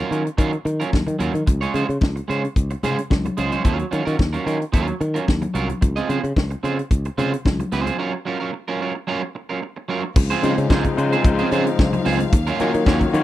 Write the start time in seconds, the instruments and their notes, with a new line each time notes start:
Already playing: clean electric guitar A#4
0.00 clean electric guitar F4
0.11 fingered electric bass D#3, clean electric guitar F#3 C#4 F4 A#4, closed hi-hat
0.25 muted clean electric guitar stroke, closed hi-hat
0.38 fingered electric bass D#3, clean electric guitar F#3 C#4 F4 A#4, kick, closed hi-hat
0.52 muted clean electric guitar stroke, closed hi-hat
0.65 fingered electric bass D#3, muted clean electric guitar stroke, closed hi-hat, muted conga
0.80 clean electric guitar F#3 C#4 F4 A#4, closed hi-hat
0.92 fingered electric bass D#2, muted clean electric guitar stroke, kick, snare, high conga
1.07 fingered electric bass D#3, muted clean electric guitar stroke, closed hi-hat, high conga
1.19 fingered electric bass D#2, clean electric guitar F#3 C#4 F4 A#4, closed hi-hat
1.33 fingered electric bass D#3, muted clean electric guitar stroke, closed hi-hat, high conga
1.47 fingered electric bass C#2, muted clean electric guitar stroke, kick, closed hi-hat, muted conga
1.61 clean electric guitar G#3 C#4 F4 C#5, closed hi-hat
1.74 fingered electric bass C#3, clean electric guitar G#3 C#4 F4 C5, closed hi-hat, muted conga
1.89 fingered electric bass C#3, closed hi-hat
2.01 fingered electric bass C#2, kick, snare, high conga
2.16 muted clean electric guitar stroke, closed hi-hat
2.28 fingered electric bass C#3, clean electric guitar G#3 C#4 F4 C5, closed hi-hat
2.43 muted clean electric guitar stroke, closed hi-hat
2.56 fingered electric bass C#2, kick, closed hi-hat
2.70 muted clean electric guitar stroke, closed hi-hat
2.83 fingered electric bass C#3, clean electric guitar G#3 C#4 F4 C5, closed hi-hat, muted conga, low conga
2.98 muted clean electric guitar stroke, closed hi-hat
3.10 fingered electric bass C#2, muted clean electric guitar stroke, kick, snare, high conga
3.25 muted clean electric guitar stroke, closed hi-hat, high conga
3.37 fingered electric bass C#2, clean electric guitar G#3 C#4 F4 C5, closed hi-hat
3.52 clean electric guitar G#3 C#4 F4 C5, closed hi-hat, high conga
3.64 fingered electric bass D#2, clean electric guitar F#3 C#4 F4 A#4, kick, closed hi-hat, muted conga
3.79 muted clean electric guitar stroke, closed hi-hat
3.91 fingered electric bass D#3, clean electric guitar F#3 C#4 F4 A#4, closed hi-hat, muted conga
4.05 fingered electric bass D#3, clean electric guitar F#3 C#4 F4 A#4, closed hi-hat
4.19 fingered electric bass D#2, muted clean electric guitar stroke, kick, snare, high conga
4.33 clean electric guitar F#3 C#4 F4 A#4, closed hi-hat
4.45 fingered electric bass D#3, clean electric guitar F#3 C#4 F4 A#4, closed hi-hat
4.62 closed hi-hat
4.72 fingered electric bass D#2, clean electric guitar F#3 C#4 F4 A#4, kick, closed hi-hat
4.87 muted clean electric guitar stroke, closed hi-hat
5.01 fingered electric bass D#3, muted clean electric guitar stroke, closed hi-hat, muted conga
5.14 clean electric guitar F#3 C#4 F4 A#4, closed hi-hat
5.27 fingered electric bass D#2, muted clean electric guitar stroke, kick, snare, high conga
5.42 muted clean electric guitar stroke, closed hi-hat, high conga
5.54 fingered electric bass C2, clean electric guitar F#3 C#4 F4 A#4, closed hi-hat
5.69 muted clean electric guitar stroke, closed hi-hat, high conga
5.81 fingered electric bass C#2, muted clean electric guitar stroke, kick, closed hi-hat, muted conga
5.96 clean electric guitar C4 F4 G#4 D#5, closed hi-hat
6.09 fingered electric bass C#3, clean electric guitar C4 F4 G#4 C5, closed hi-hat, muted conga
6.24 fingered electric bass C#3, muted clean electric guitar stroke, closed hi-hat
6.36 fingered electric bass C#2, kick, snare, high conga
6.51 muted clean electric guitar stroke, closed hi-hat
6.63 fingered electric bass C#3, clean electric guitar C4 F4 G#4 C5, closed hi-hat
6.78 muted clean electric guitar stroke, closed hi-hat
6.91 fingered electric bass C#2, kick, closed hi-hat
7.05 muted clean electric guitar stroke, closed hi-hat
7.18 fingered electric bass C#3, clean electric guitar C4 F4 G#4 C5, closed hi-hat, low conga
7.33 muted clean electric guitar stroke, closed hi-hat
7.45 fingered electric bass C#2, muted clean electric guitar stroke, kick, snare, high conga
7.59 muted clean electric guitar stroke, closed hi-hat, high conga
7.72 fingered electric bass C#2, clean electric guitar C4 F4 G#4 C5, snare, closed hi-hat
7.86 clean electric guitar C4 F4 G#4 C5, closed hi-hat, high conga
7.98 clean electric guitar F#3 C#4 F4 A#4
8.13 muted clean electric guitar stroke
8.25 clean electric guitar F#3 C#4 F4 A#4
8.40 clean electric guitar F#3 C#4 F4 A#4
8.53 muted clean electric guitar stroke
8.68 clean electric guitar F#3 C#4 F4 A#4
8.81 clean electric guitar F#3 C#4 F4 A#4
8.95 muted clean electric guitar stroke
9.07 clean electric guitar F#3 C#4 F4 A#4
9.22 muted clean electric guitar stroke
9.35 muted clean electric guitar stroke
9.49 clean electric guitar F#3 C#4 F4 A#4
9.62 muted clean electric guitar stroke
9.76 muted clean electric guitar stroke
9.88 clean electric guitar F#3 C#4 F4 A#4
10.03 muted clean electric guitar stroke
10.16 fingered electric bass C#2, string section C#3 F3 G#3 C4 F5, muted clean electric guitar stroke, kick, crash, muted conga
10.30 clean electric guitar C4 F4 G#4 C5, closed hi-hat
10.42 tine electric piano C#3 G#3 D#4 F4 C5, fingered electric bass C#3, clean electric guitar C4 F4 G#4 C5, closed hi-hat, muted conga
10.58 fingered electric bass C#3, muted clean electric guitar stroke, closed hi-hat
10.69 fingered electric bass C#2, tine electric piano C#3 G#3 D#4 F4 C5, clean electric guitar C4 F4 G#4 C5, kick, snare, high conga
10.84 muted clean electric guitar stroke, kick, closed hi-hat
10.97 tine electric piano C#3 G#3 D#4 F4 C5, fingered electric bass C#3, muted clean electric guitar stroke, closed hi-hat
11.13 clean electric guitar C4 F4 G#4 C5, closed hi-hat
11.24 fingered electric bass C#2, tine electric piano C#3 G#3 D#4 F4 C5, muted clean electric guitar stroke, kick, closed hi-hat
11.38 clean electric guitar C4 F4 G#4 C5, closed hi-hat
11.51 fingered electric bass C#3, clean electric guitar C4 F4 G#4 C5, closed hi-hat, muted conga
11.66 muted clean electric guitar stroke, closed hi-hat
11.79 fingered electric bass C#2, muted clean electric guitar stroke, kick, snare, high conga
11.93 muted clean electric guitar stroke, closed hi-hat, high conga
12.05 fingered electric bass C#2, clean electric guitar C4 F4 G#4 C5, snare, open hi-hat
12.20 muted clean electric guitar stroke, closed hi-hat, high conga
12.33 fingered electric bass D#2, string section D#3 F#3 A#3 C#4, muted clean electric guitar stroke, kick, closed hi-hat, muted conga
12.47 clean electric guitar F#3 C#4 F4 A#4, closed hi-hat
12.60 tine electric piano D#3 A#3 F4 F#4 C#5, fingered electric bass D#3, clean electric guitar F#3 C#4 F4 A#4, closed hi-hat, muted conga
12.74 fingered electric bass D#3, muted clean electric guitar stroke, closed hi-hat
12.86 fingered electric bass D#2, tine electric piano D#3 A#3 F4 F#4 C#5, clean electric guitar F#3 C#4 F4 A#4, kick, snare, high conga
13.01 muted clean electric guitar stroke, kick, closed hi-hat
13.13 tine electric piano D#3 A#3 F4 F#4 C#5, fingered electric bass D#3, muted clean electric guitar stroke, closed hi-hat